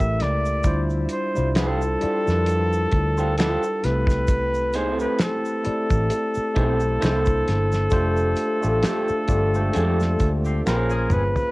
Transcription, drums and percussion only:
0.00 kick medium
0.20 snare soft
0.20 closed hi-hat medium
0.45 shaker medium
0.63 kick loud
0.63 closed hi-hat medium
0.63 shaker medium
0.90 shaker soft
1.09 closed hi-hat medium
1.09 shaker soft
1.36 shaker medium
1.55 finger snap medium
1.55 snare loud
1.55 closed hi-hat medium
1.55 shaker medium
1.82 shaker soft
2.01 closed hi-hat medium
2.27 snare soft
2.27 shaker soft
2.46 closed hi-hat medium
2.46 shaker medium
2.73 shaker medium
2.92 kick medium
2.92 closed hi-hat medium
3.18 shaker soft
3.38 finger snap medium
3.38 snare loud
3.38 closed hi-hat medium
3.38 shaker medium
3.63 shaker medium
3.84 snare soft
3.84 closed hi-hat medium
4.07 kick loud
4.07 snare soft
4.07 shaker medium
4.28 kick loud
4.28 closed hi-hat medium
4.28 shaker medium
4.54 shaker soft
4.73 closed hi-hat medium
4.73 shaker soft
4.99 shaker soft
5.18 finger snap medium
5.18 snare loud
5.18 closed hi-hat medium
5.18 shaker medium
5.45 shaker soft
5.64 closed hi-hat medium
5.90 kick loud
5.90 shaker medium
6.10 closed hi-hat medium
6.10 shaker medium
6.34 shaker medium
6.56 kick medium
6.56 closed hi-hat medium
6.80 shaker soft
7.02 finger snap medium
7.02 snare loud
7.02 closed hi-hat medium
7.02 shaker medium
7.25 kick medium
7.25 shaker medium
7.48 snare soft
7.48 closed hi-hat medium
7.72 snare soft
7.72 shaker medium
7.91 kick loud
7.91 closed hi-hat medium
7.91 shaker medium
8.17 shaker soft
8.36 closed hi-hat medium
8.36 shaker soft
8.63 shaker medium
8.83 finger snap medium
8.83 snare loud
8.83 closed hi-hat medium
8.83 shaker medium
9.08 shaker soft
9.28 kick medium
9.28 closed hi-hat medium
9.28 shaker medium
9.54 shaker soft
9.73 closed hi-hat medium
9.73 shaker medium
10.00 snare soft
10.00 shaker medium
10.19 kick medium
10.19 closed hi-hat medium
10.19 shaker soft
10.45 shaker soft
10.67 finger snap medium
10.67 snare medium
10.67 shaker medium
10.90 shaker soft
11.10 mid tom medium
11.10 shaker soft
11.36 floor tom loud
11.36 shaker medium

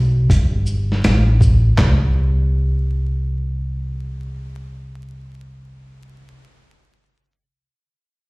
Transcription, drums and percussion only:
0.30 kick medium
0.30 closed hi-hat medium
0.66 shaker soft
0.92 snare soft
1.04 snare medium
1.04 closed hi-hat medium
1.41 kick medium
1.41 shaker soft
1.78 kick medium
1.78 snare medium
1.78 clap medium

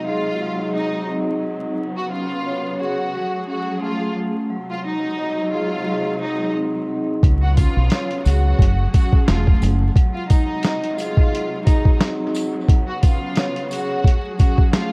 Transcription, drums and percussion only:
7.23 kick loud
7.23 closed hi-hat medium
7.57 kick medium
7.57 closed hi-hat medium
7.57 tambourine medium
7.90 snare loud
7.90 closed hi-hat loud
8.11 closed hi-hat soft
8.25 closed hi-hat medium
8.25 tambourine medium
8.59 kick loud
8.59 closed hi-hat loud
8.94 kick medium
8.94 closed hi-hat medium
8.94 tambourine soft
9.13 kick loud
9.28 snare loud
9.28 closed hi-hat medium
9.47 kick medium
9.62 closed hi-hat medium
9.62 tambourine medium
9.96 kick loud
9.96 closed hi-hat medium
10.30 kick loud
10.30 closed hi-hat medium
10.30 tambourine medium
10.63 snare loud
10.63 closed hi-hat loud
10.84 closed hi-hat soft
10.98 closed hi-hat medium
10.98 tambourine medium
11.17 kick loud
11.35 closed hi-hat loud
11.67 kick medium
11.67 closed hi-hat medium
11.67 tambourine soft
11.85 kick loud
12.01 snare loud
12.01 closed hi-hat loud
12.35 closed hi-hat medium
12.35 tambourine medium
12.68 kick loud
12.68 closed hi-hat medium
13.03 kick loud
13.03 closed hi-hat medium
13.03 tambourine medium
13.36 snare loud
13.36 closed hi-hat loud
13.56 closed hi-hat soft
13.71 closed hi-hat medium
13.71 tambourine medium
14.04 kick medium
14.04 closed hi-hat loud
14.39 kick loud
14.39 closed hi-hat medium
14.39 tambourine soft
14.58 kick medium
14.73 snare loud
14.73 closed hi-hat loud

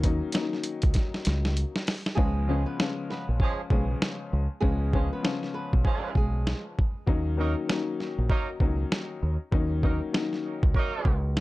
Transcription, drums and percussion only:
0.03 kick loud
0.03 closed hi-hat medium
0.32 snare loud
0.32 snare medium
0.32 closed hi-hat loud
0.53 snare soft
0.64 closed hi-hat medium
0.82 kick loud
0.82 closed hi-hat medium
0.94 kick loud
0.94 snare medium
0.94 closed hi-hat medium
1.14 snare medium
1.25 snare medium
1.25 closed hi-hat medium
1.45 snare medium
1.57 closed hi-hat medium
1.76 snare medium
1.87 snare loud
1.87 open hi-hat medium
2.06 snare medium
2.18 kick loud
2.80 snare loud
2.80 snare medium
3.10 snare soft
3.40 kick loud
3.70 kick medium
4.02 snare loud
4.02 snare medium
4.63 kick loud
4.93 kick loud
5.25 snare loud
5.25 snare medium
5.43 snare soft
5.73 kick loud
5.85 kick loud
6.15 kick loud
6.47 snare loud
6.47 snare medium
6.79 kick medium
7.07 kick loud
7.70 snare loud
7.70 snare medium
8.00 snare soft
8.30 kick loud
8.60 kick medium
8.92 snare loud
8.92 snare medium
9.52 kick loud
9.83 kick loud
10.14 snare loud
10.14 snare medium
10.33 snare soft
10.63 kick loud
10.74 kick medium
11.05 kick loud
11.37 snare loud
11.37 snare medium

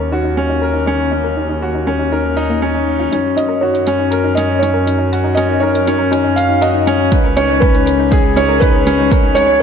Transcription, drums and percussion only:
3.13 closed hi-hat soft
3.38 closed hi-hat medium
3.75 closed hi-hat soft
3.87 closed hi-hat medium
4.12 closed hi-hat soft
4.37 closed hi-hat medium
4.63 closed hi-hat soft
4.87 closed hi-hat medium
5.13 closed hi-hat soft
5.37 closed hi-hat medium
5.75 closed hi-hat soft
5.87 closed hi-hat medium
6.13 closed hi-hat soft
6.38 closed hi-hat medium
6.62 closed hi-hat soft
6.87 closed hi-hat medium
7.12 kick loud
7.12 closed hi-hat soft
7.37 closed hi-hat medium
7.62 kick loud
7.75 closed hi-hat soft
7.87 closed hi-hat medium
8.12 kick loud
8.12 closed hi-hat soft
8.37 closed hi-hat medium
8.62 kick loud
8.62 closed hi-hat soft
8.87 closed hi-hat medium
9.12 kick loud
9.12 closed hi-hat soft
9.37 closed hi-hat medium

